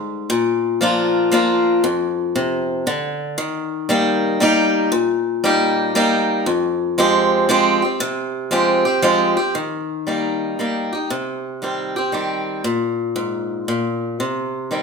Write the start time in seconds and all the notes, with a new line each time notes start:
Already playing: G#2
0.30 A#2
0.81 F3 A#3 D4 F4
1.31 F3 A#3 D4 F4
1.84 F2
2.36 C3
2.87 D3
3.38 D#3
3.89 G3 A#3 D#4 G4
4.40 G3 A#3 D#4 G4
4.92 A#2
5.44 G3 A#3 D#4 G4
5.95 G3 A#3 D#4 G4
6.46 F2
6.98 F3 G#3 C4 G4
7.49 F3 G#3 C4 G4
7.82 C4 G4
8.00 C3
8.51 F3 G#3 C4 G4
8.85 C4 G4
9.02 F3 G#3 C4 G4
9.37 C4 G4
9.55 D#3
10.07 G3 A#3 D#4 G4
10.59 G3 A#3 D#4 G4
10.93 D#4 G4
11.10 C3
11.62 D#3 G3 C4 G4
11.96 C4 G4
12.12 D#3 G3 C4 G4
12.64 A#2
13.16 G#2
13.68 A#2
14.20 C3
14.71 D#3 G3 C4 G4